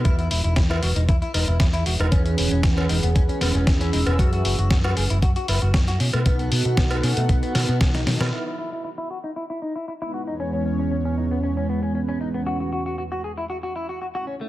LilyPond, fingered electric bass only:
\new Staff \with { instrumentName = "Fingered electric bass" } { \clef bass \time 4/4 \key e \major \tempo 4 = 116 e,8 e,,16 e,,16 e,8 e,,16 e,,16 e,16 r16 e,,16 e,,16 e,8 e,,16 e,,16 | e,8 e,,16 e,,16 r8 e,,16 e,,16 e,16 r16 e,,16 e,,16 r8 e,,16 e,,16 | fis,8 fis,,16 fis,,16 fis,8 fis,,16 fis,,16 fis,16 r16 fis,,16 fis,,16 fis,8 b,16 b,16 | b,,8 b,16 b,16 b,,8 b,16 b,16 b,,16 r16 b,16 b,16 b,,8 b,16 b,16 |
r1 | r1 | r1 | }